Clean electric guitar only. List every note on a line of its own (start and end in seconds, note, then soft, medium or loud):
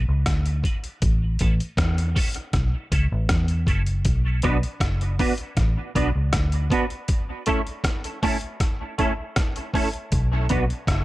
0.64 0.77 B3 medium
0.64 0.77 D4 medium
0.64 0.78 F#4 medium
0.64 0.78 B4 medium
1.40 1.53 A3 medium
1.40 1.53 C#4 medium
1.40 1.53 E4 medium
1.40 1.54 A4 medium
2.16 2.28 A3 medium
2.16 2.29 C#4 medium
2.16 2.29 E4 medium
2.16 2.29 A4 loud
2.92 3.04 A3 medium
2.92 3.05 C#4 medium
2.92 3.05 E4 medium
2.92 3.05 A4 medium
3.67 3.80 A3 medium
3.67 3.81 C#4 medium
3.67 3.81 E4 medium
3.67 3.81 A4 medium
4.43 4.56 B3 medium
4.43 4.56 D4 medium
4.43 4.57 F#4 loud
4.43 4.57 B4 loud
5.19 5.32 B3 medium
5.19 5.32 D4 medium
5.19 5.33 F#4 medium
5.19 5.33 B4 medium
5.95 6.08 B3 medium
5.95 6.08 D4 medium
5.95 6.09 F#4 medium
5.95 6.09 B4 medium
6.71 6.84 B3 medium
6.71 6.84 D4 medium
6.71 6.84 F#4 medium
6.71 6.85 B4 medium
7.47 7.59 A3 medium
7.47 7.60 C#4 medium
7.47 7.60 E4 loud
7.47 7.60 A4 loud
8.23 8.35 A3 medium
8.23 8.36 C#4 medium
8.23 8.36 E4 medium
8.23 8.36 A4 medium
8.98 9.11 A3 medium
8.98 9.11 C#4 medium
8.98 9.12 E4 medium
8.98 9.12 A4 medium
9.74 9.87 A3 medium
9.74 9.87 C#4 medium
9.74 9.88 E4 medium
9.74 9.88 A4 medium
10.50 10.63 B3 medium
10.50 10.63 D4 medium
10.50 10.63 F#4 medium
10.50 10.64 B4 medium